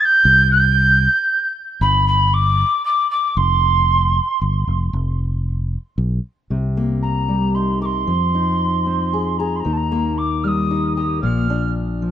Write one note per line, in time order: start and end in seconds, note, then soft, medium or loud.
0.05 0.51 G6 loud
0.25 1.07 C2 loud
0.51 1.51 G6 loud
1.81 2.63 G1 loud
1.81 2.06 B5 loud
2.08 2.35 B5 loud
2.34 2.85 D6 loud
2.85 3.09 D6 loud
3.11 3.39 D6 loud
3.37 4.19 F1 loud
3.37 4.41 C6 medium
4.42 4.65 G1 medium
4.67 4.91 F1 medium
4.93 5.75 F1 medium
5.98 6.18 B1 medium
6.50 8.05 C2 medium
6.50 8.08 C3 medium
6.77 8.08 A#3 medium
7.02 7.56 A#5 medium
7.28 8.04 G3 soft
7.55 8.10 D#4 soft
7.55 7.81 C6 medium
7.82 8.05 A#4 medium
7.82 9.40 C6 medium
7.82 7.86 D6 medium
8.07 9.62 F2 medium
8.07 9.65 F3 medium
8.34 9.62 D#4 medium
8.86 9.62 C4 soft
9.13 9.38 G#4 medium
9.39 9.63 G#4 medium
9.39 9.57 A#5 medium
9.56 9.61 C6 medium
9.60 9.74 A#5 medium
9.65 11.20 D#2 medium
9.65 11.19 D#3 medium
9.73 9.78 A5 medium
9.77 10.20 A#5 medium
9.92 11.49 A#3 medium
10.18 10.45 D6 medium
10.44 11.20 G3 soft
10.44 10.96 D#6 medium
10.44 10.49 F6 medium
10.71 11.20 D#4 soft
10.96 11.23 G4 medium
10.96 11.21 D#6 medium
11.23 12.11 A#1 medium
11.23 12.11 A#2 medium
11.23 11.72 F6 medium
11.50 12.11 D4 medium
12.02 12.11 F3 soft